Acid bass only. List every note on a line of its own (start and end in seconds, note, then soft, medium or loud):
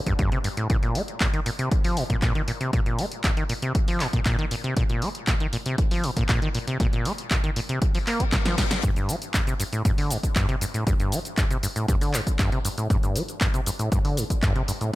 0.07 0.13 G2 loud
0.19 0.30 G2 loud
0.32 0.39 C3 medium
0.44 0.49 G2 medium
0.57 0.68 A2 medium
0.70 0.77 A#2 loud
0.83 0.97 A#2 medium
0.95 1.02 A#3 medium
1.21 1.28 A#2 medium
1.34 1.41 D#3 medium
1.46 1.50 A#2 medium
1.59 1.69 C3 medium
1.85 1.98 F3 medium
1.97 2.04 A#2 medium
2.10 2.17 A#2 loud
2.22 2.33 A#2 loud
2.35 2.42 D#3 medium
2.48 2.52 A#2 medium
2.61 2.71 C3 medium
2.73 2.80 A#2 medium
2.86 3.00 A#2 medium
2.99 3.06 A#3 medium
3.24 3.31 A#2 medium
3.37 3.44 D#3 medium
3.50 3.54 A#2 medium
3.62 3.73 C3 medium
3.88 4.02 F3 medium
4.00 4.07 A#2 medium
4.13 4.20 A#2 loud
4.26 4.36 A#2 loud
4.39 4.46 D#3 medium
4.51 4.56 A#2 medium
4.64 4.74 C3 medium
4.77 4.84 A#2 loud
4.90 5.04 A#2 medium
5.02 5.09 A#3 medium
5.28 5.35 A#2 medium
5.40 5.47 D#3 medium
5.53 5.57 A#2 medium
5.66 5.76 C3 medium
5.91 6.05 F3 medium
6.04 6.11 A#2 medium
6.17 6.24 A#2 loud
6.29 6.40 A#2 loud
6.42 6.49 D#3 medium
6.55 6.59 A#2 medium
6.68 6.78 C3 medium
6.80 6.87 A#2 loud
6.93 7.07 A#2 medium
7.05 7.13 A#3 medium
7.31 7.38 A#2 medium
7.44 7.51 D#3 medium
7.56 7.61 A#2 medium
7.69 7.80 C3 medium
7.95 7.99 F3 medium
8.07 8.22 A#3 medium
8.20 8.24 C#4 loud
8.33 8.37 A#2 loud
8.46 8.56 F3 medium
8.58 8.65 A#2 medium
8.71 8.75 C#3 medium
8.83 8.91 G2 loud
8.96 9.10 G2 medium
9.09 9.16 G3 medium
9.34 9.41 G2 medium
9.47 9.54 C3 medium
9.60 9.64 G2 medium
9.73 9.83 A2 medium
9.85 9.92 G2 loud
9.98 10.12 D3 medium
10.11 10.18 G2 medium
10.36 10.47 G2 loud
10.49 10.56 C3 medium
10.61 10.66 G2 medium
10.74 10.85 A2 medium
10.87 10.94 G2 medium
11.00 11.14 G2 medium
11.12 11.19 G3 medium
11.38 11.45 G2 medium
11.51 11.57 C3 medium
11.63 11.67 G2 medium
11.76 11.86 A2 medium
11.88 11.96 G2 loud
12.01 12.15 D3 medium
12.14 12.21 G2 medium
12.39 12.50 G2 loud
12.52 12.59 C3 medium
12.65 12.69 G2 medium
12.78 12.88 A2 medium
12.90 12.97 G2 loud
13.03 13.17 G2 medium
13.16 13.23 G3 medium
13.41 13.48 G2 medium
13.54 13.61 C3 medium
13.67 13.71 G2 medium
13.79 13.90 A2 medium
13.92 13.99 G2 loud
14.05 14.19 D3 medium
14.17 14.24 G2 medium
14.43 14.53 G2 medium
14.56 14.63 C3 medium
14.68 14.72 G2 medium
14.81 14.91 A2 medium